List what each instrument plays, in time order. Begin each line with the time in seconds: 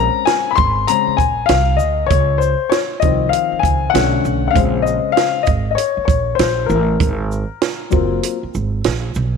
Already playing: upright piano G#3 C4 C#4 A#5
0.25 upright piano G#5, snare, closed hi-hat
0.51 upright piano B5
0.55 upright bass G#1, upright piano C6, kick, shaker
0.87 upright piano C#3 G#3 C4 A#5, closed hi-hat
1.07 muted upright bass stroke
1.17 upright bass A#1, upright piano G#5, kick, closed hi-hat, shaker
1.46 upright bass C2, upright piano F5, snare, closed hi-hat
1.77 upright bass D2, upright piano D#5, shaker
2.06 upright piano C#5, closed hi-hat
2.11 upright bass C#2, kick
2.38 upright piano C5, shaker
2.70 upright piano C#5, snare, closed hi-hat
3.00 upright bass C2, upright piano D#3 F3 C4 D#5, kick, closed hi-hat, shaker
3.29 upright piano F5, closed hi-hat
3.52 muted upright bass stroke
3.59 upright bass C#2, upright piano G#5, kick
3.65 closed hi-hat, shaker
3.90 upright piano D3 F#5
3.94 upright bass B1, upright piano A3 C#4, snare, closed hi-hat
4.25 upright bass B1, shaker
4.48 upright piano F5 F#5
4.53 upright bass A#1, upright piano C#3 G#3 C4, kick, closed hi-hat
4.82 upright piano D#5
4.87 shaker
5.12 upright piano F5
5.17 snare, closed hi-hat
5.43 upright piano D#5, closed hi-hat, shaker
5.47 upright bass G#1, kick
5.71 upright piano D#5
5.75 upright piano C#5, closed hi-hat
5.97 muted upright bass stroke
6.05 upright bass A#1, upright piano C#5, kick, closed hi-hat, shaker
6.35 upright piano C5, closed hi-hat
6.39 upright bass A#1, snare
6.66 upright bass A1, upright piano A#4, shaker
7.00 upright bass G#1, kick, closed hi-hat
7.32 shaker
7.61 snare, closed hi-hat
7.90 upright bass F#1, upright piano F#3 A#3 C4 F4, kick, shaker
8.23 closed hi-hat
8.43 muted upright bass stroke
8.55 upright bass G#1, shaker
8.84 upright bass A#1, snare, closed hi-hat
9.15 upright bass B1, shaker